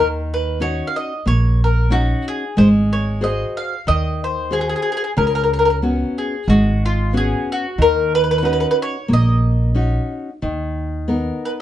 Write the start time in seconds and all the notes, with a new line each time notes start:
Already playing: D#2 D#3
0.34 B4
0.60 C#4 D#4 F#4 C#5
0.87 F5
0.96 D#5
1.26 A#1 A#3 C#5
1.64 A#4
1.90 C#4 D#4 F#4
2.28 G#4
2.57 G#1 G#3 C5
2.93 C#5
3.21 F#4 G#4 C5 D#5
3.57 F5
3.87 D#2 D#3 D#5
4.24 C5
4.51 F#4 G#4 C5
4.61 G#4
4.69 G#4
4.76 G#4
4.82 G#4
4.92 G#4
4.97 G#4
5.04 G#4
5.17 C#2 C#3 A#4
5.27 A#4
5.35 A#4
5.44 A#4
5.53 A#4
5.59 A#4
5.65 A#4
5.70 A#4
5.82 B3 C#4 F#4
6.18 G#4
6.48 G#1 G#3 F#4
6.86 F4
7.13 B3 C#4 F#4
7.17 G#4
7.52 F#4
7.78 D#2 D#3 A#4
8.15 B4
8.24 B4
8.31 B4
8.38 B4
8.42 C#4 D#4 F#4 B4
8.53 B4
8.60 B4
8.71 B4
8.82 C#5
9.08 A#1 A#3
9.13 D#5
9.75 C#4 D#4 F#4
10.42 D#2 D#3
11.08 B3 D#4 A#4
11.45 B4